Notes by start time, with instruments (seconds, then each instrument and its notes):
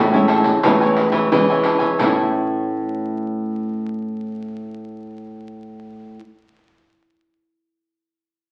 Already playing: nylon-string guitar A2 E3, cavaquinho A4 C#5 E5 G#5
0.13 nylon-string guitar G#3 C#4 E4, cavaquinho C#5 E5 G#5, pandeiro
0.28 cavaquinho A4 C#5 E5 G#5, pandeiro
0.44 pandeiro
0.63 nylon-string guitar A2 E3 G#3 C#4 E4, cavaquinho A4 C#5 E5 G#5, pandeiro
0.81 cavaquinho C#5 E5 G#5, pandeiro
0.97 muted cavaquinho stroke, pandeiro
1.12 nylon-string guitar E3, cavaquinho C#5 E5 G#5, pandeiro
1.31 nylon-string guitar E3 G#3 C#4 E4, pandeiro
1.50 cavaquinho C#5 E5 G#5, pandeiro
1.64 cavaquinho A4 C#5 E5 G#5, pandeiro
1.79 cavaquinho C#5 E5 G#5, pandeiro
1.98 nylon-string guitar A2, cavaquinho A4 C#5 E5 G#5, pandeiro
2.03 nylon-string guitar C#4 E4